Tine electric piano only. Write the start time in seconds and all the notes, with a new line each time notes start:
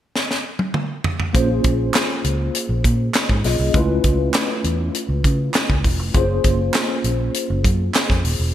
1.33 A#3 C#4 F4 G#4 C5
3.45 A#3 C#4 F4 G#4 D#5
3.74 A3 C#4 E4 F4 B4
6.14 A#3 C#4 F4 G#4 C5